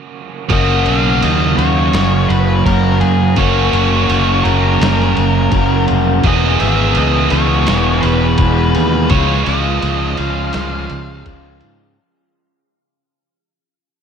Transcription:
0.49 0.84 F#1 medium
0.49 3.34 F#2 loud
0.49 3.35 C#3 medium
0.49 1.61 F#3 medium
0.49 1.60 A#3 medium
0.49 kick loud
0.49 ride medium
0.53 1.59 C#4 medium
0.53 1.57 F#4 medium
0.53 0.88 D#5 medium
0.86 1.21 B1 medium
0.86 1.23 F5 loud
0.86 ride medium
1.21 1.57 D#2 medium
1.21 1.57 D#5 medium
1.21 ride loud
1.57 1.92 D#2 loud
1.57 2.64 A#3 medium
1.57 2.64 C#4 medium
1.57 2.63 F#4 medium
1.57 2.31 C#5 medium
1.57 ride medium
1.61 2.64 F#3 medium
1.93 2.28 F#1 medium
1.93 snare loud
1.93 ride medium
2.28 2.64 F#1 medium
2.28 2.65 B4 medium
2.28 ride medium
2.65 3.00 F#1 medium
2.65 3.35 F#3 medium
2.65 3.36 A#3 medium
2.65 3.36 C#4 medium
2.65 3.00 A#4 medium
2.65 kick medium
2.65 ride loud
2.69 3.37 F#4 medium
3.00 3.36 F#2 medium
3.00 3.38 G#4 medium
3.00 ride medium
3.36 3.71 F#1 medium
3.36 6.22 F#2 medium
3.36 6.22 C#3 medium
3.36 4.43 F#3 medium
3.36 4.43 A#3 medium
3.36 4.44 C#4 medium
3.36 4.42 F#4 loud
3.36 4.48 C#5 medium
3.36 kick medium
3.36 ride medium
3.73 4.07 F#1 medium
3.73 ride medium
4.10 4.44 F#1 medium
4.10 ride medium
4.44 4.79 F#1 medium
4.44 5.49 F#3 medium
4.44 5.51 A#3 medium
4.44 5.50 C#4 medium
4.44 5.50 F#4 medium
4.44 5.84 A#4 medium
4.44 ride medium
4.81 5.15 F#1 medium
4.81 snare loud
4.81 ride medium
5.00 snare soft
5.17 5.52 F#1 medium
5.17 ride medium
5.50 5.87 F#1 medium
5.50 6.21 F#3 medium
5.50 6.22 A#3 medium
5.50 6.23 C#4 medium
5.50 kick medium
5.50 ride medium
5.55 6.23 F#4 medium
5.88 6.24 F1 medium
5.88 ride medium
6.22 6.59 E1 medium
6.22 7.28 E2 medium
6.22 7.29 B2 medium
6.22 7.29 E3 medium
6.22 7.31 G#3 medium
6.22 kick loud
6.22 ride medium
6.26 7.30 B3 loud
6.26 7.29 G#4 medium
6.26 6.60 D#5 medium
6.60 6.95 G#1 medium
6.60 6.97 E5 medium
6.60 ride medium
6.95 7.31 C#2 medium
6.95 7.31 D#5 medium
6.95 ride medium
7.30 7.66 C#2 medium
7.30 8.38 B2 medium
7.30 8.38 E3 medium
7.30 8.41 G#3 medium
7.30 8.37 B3 medium
7.30 8.42 G#4 medium
7.30 8.05 C#5 medium
7.30 ride medium
7.34 8.38 E2 medium
7.67 8.02 E1 medium
7.67 snare loud
7.67 ride loud
8.01 8.38 E1 medium
8.01 8.37 B4 medium
8.01 ride medium
8.38 8.74 E1 loud
8.38 9.09 E2 medium
8.38 9.09 B2 medium
8.38 9.10 E3 medium
8.38 9.12 G#3 medium
8.38 9.13 B4 medium
8.38 kick medium
8.38 ride loud
8.42 9.11 B3 medium
8.42 9.14 G#4 medium
8.75 9.10 D#2 medium
8.75 ride medium
9.10 9.46 C#2 medium
9.10 10.16 C#3 medium
9.10 10.17 F3 medium
9.10 10.18 G#3 medium
9.10 9.44 C#5 medium
9.10 kick medium
9.10 ride medium
9.14 10.18 C#4 medium
9.14 10.16 F4 medium
9.44 9.82 C#2 medium
9.44 10.20 D#5 medium
9.44 ride medium
9.82 10.17 C#2 medium
9.82 ride medium
10.17 10.54 C#2 medium
10.17 11.25 G#3 medium
10.17 11.25 C#4 medium
10.17 11.24 F4 medium
10.17 11.23 F5 medium
10.17 ride medium
10.22 11.24 C#3 medium
10.22 11.25 F3 medium
10.53 10.90 C#2 medium
10.53 snare loud
10.53 ride medium
10.90 11.26 C#2 medium
10.90 ride medium
11.25 11.61 C#2 medium
11.25 11.96 C#3 medium
11.25 11.96 F3 medium
11.25 11.97 G#3 medium
11.25 11.97 C#4 medium
11.25 11.98 F4 medium
11.25 kick medium
11.25 ride medium
11.61 11.98 G#2 medium
11.61 ride medium

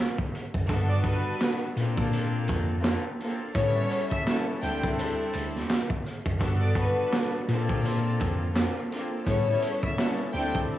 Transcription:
0.00 0.24 G3 loud
0.00 0.24 C4 loud
0.00 0.24 D4 loud
0.00 0.24 E4 loud
0.00 0.25 A4 loud
0.18 kick medium
0.35 closed hi-hat medium
0.54 0.66 F#2 medium
0.54 kick loud
0.67 1.15 G2 loud
0.67 1.68 G3 loud
0.67 1.68 B3 medium
0.67 1.69 D4 medium
0.67 1.69 F#4 loud
0.67 1.69 A4 loud
0.67 kick loud
0.67 closed hi-hat loud
0.89 1.03 D5 medium
1.04 1.58 B4 medium
1.04 kick medium
1.04 closed hi-hat medium
1.41 snare loud
1.41 clap medium
1.41 closed hi-hat medium
1.77 2.48 A#2 loud
1.77 2.77 A#3 loud
1.77 2.78 C4 medium
1.77 2.78 D4 loud
1.77 2.78 F4 loud
1.77 2.78 A4 loud
1.77 closed hi-hat medium
1.98 kick medium
2.13 closed hi-hat loud
2.48 2.95 F2 loud
2.48 kick medium
2.48 closed hi-hat medium
2.81 3.16 A#3 medium
2.81 3.16 C4 medium
2.81 3.16 D4 medium
2.81 3.16 F4 medium
2.81 3.16 A4 medium
2.81 snare loud
2.81 clap loud
2.81 closed hi-hat medium
3.20 3.53 A#3 medium
3.20 3.53 C4 medium
3.20 3.53 D4 medium
3.20 3.53 F4 medium
3.20 3.53 A4 medium
3.20 closed hi-hat medium
3.54 3.84 A2 loud
3.54 4.21 G3 loud
3.54 4.22 B3 medium
3.54 4.22 C#4 medium
3.54 4.22 E4 loud
3.54 4.22 A4 loud
3.54 4.08 C#5 loud
3.54 kick loud
3.54 closed hi-hat loud
3.91 closed hi-hat medium
4.11 4.24 E5 medium
4.11 kick medium
4.25 4.60 G3 medium
4.25 4.62 B3 medium
4.25 4.62 C#4 medium
4.25 4.61 E4 medium
4.25 4.62 A4 loud
4.25 snare loud
4.25 clap medium
4.25 closed hi-hat medium
4.62 5.20 D2 loud
4.62 5.95 G3 loud
4.62 5.96 C4 loud
4.62 5.96 D4 loud
4.62 5.96 E4 loud
4.62 5.96 A4 loud
4.62 4.81 G5 loud
4.62 closed hi-hat medium
4.83 kick loud
4.99 closed hi-hat loud
5.33 5.63 D2 loud
5.33 closed hi-hat medium
5.56 snare soft
5.70 snare loud
5.70 clap loud
5.70 closed hi-hat medium
5.90 kick medium
6.06 closed hi-hat medium
6.26 6.38 F#2 loud
6.26 kick loud
6.39 6.87 G2 loud
6.39 7.40 G3 loud
6.39 7.40 B3 medium
6.39 7.40 D4 medium
6.39 7.40 F#4 loud
6.39 7.40 A4 loud
6.39 kick loud
6.39 closed hi-hat loud
6.61 6.74 D5 medium
6.75 7.30 B4 medium
6.75 kick medium
6.75 closed hi-hat medium
7.13 snare loud
7.13 clap medium
7.13 closed hi-hat medium
7.48 8.19 A#2 loud
7.48 8.49 A#3 loud
7.48 8.49 C4 medium
7.48 8.49 D4 loud
7.48 8.49 F4 loud
7.48 8.50 A4 loud
7.48 closed hi-hat medium
7.69 kick medium
7.85 closed hi-hat loud
8.19 8.66 F2 loud
8.19 kick loud
8.19 closed hi-hat medium
8.53 8.87 A#3 medium
8.53 8.87 C4 medium
8.53 8.87 D4 medium
8.53 8.88 F4 medium
8.53 8.88 A4 medium
8.53 snare loud
8.53 clap loud
8.53 closed hi-hat medium
8.91 9.24 A#3 medium
8.91 9.24 C4 medium
8.91 9.25 D4 medium
8.91 9.25 F4 medium
8.91 9.25 A4 medium
8.91 closed hi-hat medium
9.26 9.56 A2 loud
9.26 9.93 G3 loud
9.26 9.93 B3 medium
9.26 9.93 C#4 medium
9.26 9.93 E4 medium
9.26 9.94 A4 loud
9.26 9.80 C#5 loud
9.26 kick loud
9.26 closed hi-hat loud
9.62 closed hi-hat medium
9.83 9.96 E5 medium
9.83 kick medium
9.97 10.32 G3 medium
9.97 10.33 B3 medium
9.97 10.33 C#4 medium
9.97 10.33 E4 medium
9.97 10.33 A4 loud
9.97 snare loud
9.97 clap loud
9.97 closed hi-hat medium
10.33 10.63 D2 medium
10.33 10.69 G3 loud
10.33 10.69 C4 medium
10.33 10.69 D4 loud
10.33 10.69 E4 medium
10.33 10.70 A4 loud
10.33 10.53 G5 loud
10.33 open hi-hat medium
10.55 kick medium

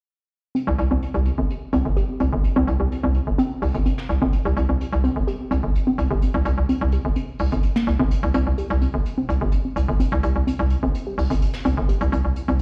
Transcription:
0.55 0.61 C4 medium
0.55 closed hi-hat medium
0.67 0.76 C2 medium
0.67 closed hi-hat soft
0.78 0.88 C2 loud
0.78 closed hi-hat medium
0.91 0.99 C2 medium
0.91 0.96 C4 loud
1.02 closed hi-hat medium
1.14 1.31 C2 medium
1.14 1.22 G4 medium
1.14 closed hi-hat soft
1.25 closed hi-hat medium
1.38 1.46 G1 medium
1.38 1.43 C4 medium
1.50 closed hi-hat medium
1.73 1.82 C2 medium
1.73 1.79 C4 loud
1.73 closed hi-hat medium
1.85 2.02 G1 medium
1.97 2.05 G4 medium
1.97 closed hi-hat medium
2.20 2.29 C2 medium
2.20 2.26 C4 medium
2.20 closed hi-hat medium
2.33 2.50 G1 medium
2.44 closed hi-hat medium
2.56 2.64 C2 medium
2.56 2.61 C4 loud
2.67 2.77 C2 medium
2.67 closed hi-hat medium
2.80 2.88 C2 medium
2.80 2.88 G4 medium
2.92 closed hi-hat medium
3.03 3.21 C2 medium
3.03 3.09 C4 medium
3.14 closed hi-hat medium
3.27 3.35 G1 medium
3.38 3.44 C4 loud
3.38 closed hi-hat medium
3.62 3.71 C2 medium
3.62 3.70 G4 medium
3.62 open hi-hat medium
3.74 3.91 G1 medium
3.74 closed hi-hat soft
3.86 3.91 C4 medium
3.86 closed hi-hat medium
3.98 snare soft
4.09 4.18 C2 medium
4.09 closed hi-hat medium
4.22 4.39 G1 medium
4.22 4.27 C4 loud
4.33 closed hi-hat medium
4.45 4.54 C2 medium
4.45 4.53 G4 medium
4.45 closed hi-hat soft
4.57 4.66 C2 loud
4.57 closed hi-hat medium
4.69 4.77 C2 medium
4.69 4.74 C4 medium
4.81 closed hi-hat medium
4.93 5.10 C2 medium
4.93 closed hi-hat soft
5.04 5.09 C4 loud
5.04 closed hi-hat medium
5.16 5.24 G1 medium
5.27 5.36 G4 medium
5.27 closed hi-hat medium
5.51 5.60 C2 medium
5.51 5.57 C4 medium
5.51 closed hi-hat medium
5.63 5.80 G1 medium
5.75 closed hi-hat medium
5.87 5.92 C4 loud
5.98 6.07 C2 medium
5.98 closed hi-hat medium
6.11 6.28 G1 medium
6.11 6.18 G4 medium
6.22 closed hi-hat medium
6.34 6.43 C2 loud
6.34 6.39 C4 medium
6.45 6.55 C2 loud
6.45 closed hi-hat medium
6.58 6.66 C2 medium
6.69 6.75 C4 loud
6.69 closed hi-hat medium
6.81 6.98 C2 medium
6.92 7.01 G4 medium
6.92 closed hi-hat medium
7.05 7.13 G1 medium
7.16 7.22 C4 medium
7.16 closed hi-hat medium
7.39 7.49 C2 medium
7.39 open hi-hat medium
7.52 7.69 G1 medium
7.52 7.57 C4 medium
7.52 closed hi-hat soft
7.63 closed hi-hat medium
7.76 7.81 A#3 loud
7.76 snare medium
7.87 7.96 C2 medium
7.87 closed hi-hat medium
8.00 8.17 G1 medium
8.00 8.07 C4 loud
8.11 closed hi-hat medium
8.23 8.31 C2 medium
8.23 closed hi-hat soft
8.34 8.43 C2 loud
8.34 8.40 C4 medium
8.34 closed hi-hat medium
8.47 8.55 C2 medium
8.58 8.66 G4 medium
8.58 closed hi-hat medium
8.70 8.87 C2 loud
8.70 closed hi-hat soft
8.81 8.87 C4 medium
8.81 closed hi-hat medium
8.94 9.02 G1 medium
9.05 closed hi-hat medium
9.18 9.23 C4 loud
9.29 9.38 C2 medium
9.29 closed hi-hat medium
9.41 9.58 G1 medium
9.41 9.49 G4 medium
9.52 closed hi-hat medium
9.65 9.70 C4 medium
9.76 9.85 C2 medium
9.76 closed hi-hat medium
9.88 10.06 G1 medium
10.00 10.05 C4 loud
10.00 closed hi-hat medium
10.12 10.20 C2 loud
10.23 10.32 C2 medium
10.23 10.32 G4 medium
10.23 closed hi-hat medium
10.36 10.44 C2 medium
10.47 10.53 C4 medium
10.47 closed hi-hat medium
10.59 10.76 C2 medium
10.70 closed hi-hat medium
10.83 10.91 G1 medium
10.83 10.88 C4 loud
10.95 closed hi-hat medium
11.07 11.14 G4 medium
11.18 11.27 C2 medium
11.18 open hi-hat medium
11.30 11.47 G1 medium
11.30 11.35 C4 medium
11.30 closed hi-hat soft
11.42 closed hi-hat medium
11.54 snare soft
11.65 11.74 C2 medium
11.65 11.71 C4 loud
11.65 closed hi-hat medium
11.77 11.94 G1 medium
11.89 11.97 G4 medium
11.89 closed hi-hat medium
12.01 12.09 C2 loud
12.01 closed hi-hat soft
12.12 12.21 C2 loud
12.12 12.18 C4 medium
12.12 closed hi-hat medium
12.25 12.33 C2 medium
12.36 closed hi-hat medium
12.48 12.62 C2 medium
12.48 12.53 C4 loud
12.48 closed hi-hat soft

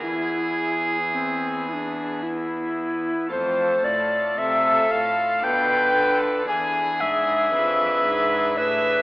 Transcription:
0.00 3.07 E2 soft
0.00 3.25 B3 soft
0.00 3.26 E4 soft
0.00 0.98 E4 medium
0.00 2.18 G#4 medium
1.13 1.70 C4 medium
1.69 1.74 E4 soft
1.73 2.24 D4 medium
2.23 3.30 E4 medium
3.27 5.38 A3 soft
3.27 5.38 F4 soft
3.27 5.39 A4 soft
3.27 3.86 C5 medium
3.32 3.81 F2 soft
3.32 3.81 F2 medium
3.84 4.33 A2 medium
3.84 4.37 A2 medium
3.84 4.40 D5 medium
4.37 4.87 C3 soft
4.37 4.90 C3 medium
4.37 5.45 A4 medium
4.37 4.93 E5 medium
4.91 5.40 A2 soft
4.91 5.43 A2 medium
4.91 5.45 F5 medium
5.39 6.43 D4 soft
5.39 6.44 F4 soft
5.39 6.45 A4 soft
5.39 6.48 B4 medium
5.44 5.92 B2 soft
5.44 5.95 B2 medium
5.44 6.18 G5 medium
5.96 6.47 D3 medium
5.96 6.45 D3 soft
6.45 7.02 E2 medium
6.45 9.02 D4 soft
6.45 9.02 E4 soft
6.45 9.02 G#4 soft
6.45 7.51 G#4 medium
6.45 7.02 G#5 medium
6.49 6.97 E2 soft
7.01 7.53 G#2 medium
7.01 7.50 G#2 medium
7.01 8.59 E5 medium
7.53 8.02 F2 soft
7.53 8.05 F2 medium
7.53 8.56 B4 medium
8.05 8.59 G#2 medium
8.05 8.54 G#2 medium
8.57 9.02 A2 medium
8.57 9.02 B4 medium
8.57 9.02 E5 medium

